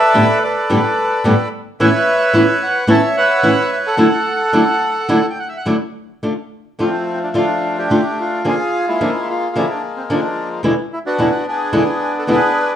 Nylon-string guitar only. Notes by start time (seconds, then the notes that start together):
0.14 G2 A2 D3 G3 B3 G4
0.70 G2 A2 D3 G3 B3 G4
1.24 G2 A2 D3 G3 B3 G4
1.80 A2 E3 B3 C#4 E4
2.34 A2 E3 B3 C#4 E4
2.87 A2 E3 B3 C#4 E4
3.43 A2 E3 B3 C#4 E4
3.97 D3 F#3 A3 D4 E4
4.53 D3 F#3 A3 D4 E4
5.09 D3 F#3 A3 D4 E4
5.66 D3 F#3 A3 D4 E4
6.23 D3 A3 D4 F4
6.79 D3 A3 D4 F4
7.34 D3 A3 D4 F4
7.90 D3 A3 D4 F4
8.45 D3 F3 A#3 D4 G#4
9.01 D3 F3 A#3 D4 G#4
9.56 D3 F3 A#3 D4 G#4
10.10 D3 F3 A#3 D4 G#4
10.63 E2 B2 D3 G#3 B3 E4
11.18 E2 B2 D3 G#3 B3 E4
11.73 E2 B2 D3 G#3 B3 E4
12.27 E2 B2 D3 G#3 B3 E4